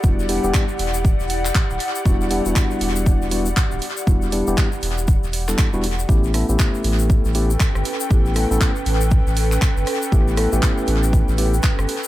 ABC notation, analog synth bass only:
X:1
M:4/4
L:1/16
Q:"Swing 16ths" 1/4=119
K:Edor
V:1 name="Analog synth bass" clef=bass
E,,,3 E,,, z2 E,,,3 E,,,3 z D,,, z2 | E,,,3 E,,, z2 E,,,3 E,,,3 z D,,, z2 | E,,,3 E,,, z2 E,,,3 E,,,3 z E,,,3 | A,,,3 A,,, z2 A,,,3 A,,,3 z G,,, z2 |
A,,,3 A,,, z2 A,,,3 A,,,3 z G,,, z2 | A,,,3 A,,, z2 A,,,3 A,,,3 z G,,, z2 |]